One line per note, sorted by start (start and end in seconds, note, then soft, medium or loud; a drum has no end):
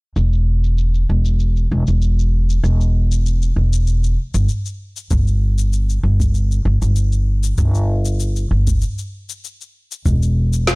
0.16 1.05 E1 medium
0.16 shaker soft
0.33 shaker soft
0.64 shaker medium
0.78 shaker soft
0.94 shaker soft
1.09 1.67 E1 medium
1.25 shaker medium
1.40 shaker soft
1.56 shaker soft
1.71 1.85 E1 medium
1.87 2.60 E1 medium
1.87 shaker medium
2.02 shaker soft
2.19 shaker soft
2.50 shaker medium
2.64 3.52 E1 medium
2.64 shaker soft
2.81 shaker soft
3.12 shaker medium
3.26 shaker soft
3.42 shaker soft
3.56 4.14 E1 medium
3.73 shaker medium
3.87 shaker medium
4.04 shaker soft
4.34 4.46 G1 medium
4.34 shaker medium
4.49 shaker soft
4.66 shaker soft
4.97 shaker medium
5.11 6.00 G1 medium
5.11 kick loud
5.11 shaker medium
5.28 shaker soft
5.58 shaker medium
5.73 shaker soft
5.89 shaker soft
6.03 6.62 G1 medium
6.20 kick medium
6.20 shaker medium
6.35 shaker medium
6.52 shaker soft
6.65 6.79 G1 medium
6.82 7.54 G1 medium
6.82 shaker medium
6.96 shaker soft
7.12 shaker soft
7.43 shaker medium
7.58 8.47 G1 medium
7.58 kick loud
7.58 shaker medium
7.75 shaker soft
8.05 shaker medium
8.20 shaker medium
8.36 shaker soft
8.51 8.82 G1 medium
8.67 kick medium
8.67 shaker medium
8.81 shaker medium
8.98 shaker soft
9.29 shaker medium
9.44 shaker medium
9.61 shaker soft
9.92 shaker medium
10.06 10.75 E1 medium
10.06 kick loud
10.06 shaker medium
10.22 shaker soft
10.53 shaker medium
10.67 snare medium
10.67 shaker medium